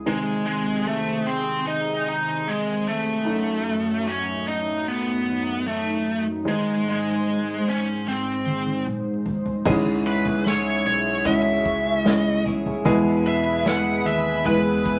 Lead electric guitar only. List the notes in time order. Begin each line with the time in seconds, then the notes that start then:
0.07 G#3
0.46 G#3
0.87 A3
1.27 C4
1.67 D#4
2.08 D#4
2.48 G#3
2.88 A3
4.07 C#4
4.48 D#4
4.88 B3
5.67 A3
6.48 G#3
6.90 G#3
7.69 C#4
8.08 C4
10.07 B4
10.48 C#5
10.87 C#5
11.26 E5
12.02 D#5
13.27 E5
13.68 F#5
14.06 E5
14.46 B4